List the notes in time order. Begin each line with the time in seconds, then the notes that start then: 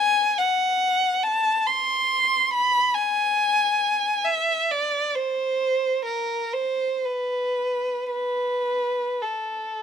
Already playing: G#5
0.38 F#5
1.23 A5
1.66 C6
2.53 B5
2.94 G#5
4.25 E5
4.71 D5
5.15 C5
6.05 A#4
6.53 C5
7.05 B4
8.11 B4
9.21 A4